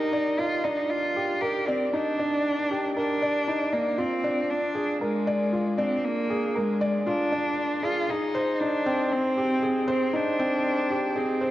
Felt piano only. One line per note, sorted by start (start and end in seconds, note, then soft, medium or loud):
0.00 0.65 D4 medium
0.00 0.39 D#4 medium
0.00 1.16 G4 medium
0.00 1.42 A#4 medium
0.00 0.13 D5 medium
0.13 0.38 D5 medium
0.39 0.64 D#4 medium
0.65 0.80 D4 medium
1.16 1.41 G4 medium
1.42 1.67 A#4 medium
1.68 1.92 D5 medium
1.93 2.18 D#4 medium
2.19 2.34 D4 medium
2.71 2.95 G4 medium
2.96 3.21 A#4 medium
3.22 3.46 D5 medium
3.48 3.72 D#4 medium
3.73 3.88 D4 medium
3.98 4.23 F4 medium
4.24 4.39 D4 medium
4.75 5.00 G#4 medium
5.01 5.26 A#4 medium
5.27 5.52 D5 medium
5.53 5.77 F4 medium
5.78 5.93 D4 medium
6.30 6.54 G#4 medium
6.55 6.80 A#4 medium
6.81 7.05 D5 medium
7.07 7.31 F4 medium
7.32 7.47 D4 medium
7.83 8.07 G#4 medium
8.09 8.33 G#4 medium
8.35 8.59 C5 loud
8.61 8.85 D#4 medium
8.86 9.01 C4 loud
9.37 9.62 G4 medium
9.62 9.87 G#4 medium
9.88 10.13 C5 loud
10.13 10.38 D#4 medium
10.39 10.54 C4 loud
10.90 11.15 G4 medium
11.16 11.41 G#4 medium
11.41 11.51 C5 medium